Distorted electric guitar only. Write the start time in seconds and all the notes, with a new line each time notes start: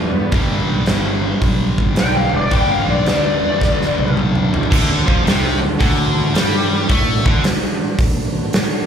Already playing: B2 F#3 B3
0.32 G2 D3 G3
2.50 G2 D3 G3
4.70 D3
5.06 F3
5.25 C3
5.62 D3
5.79 D3
6.34 G3
6.89 A3
7.26 D3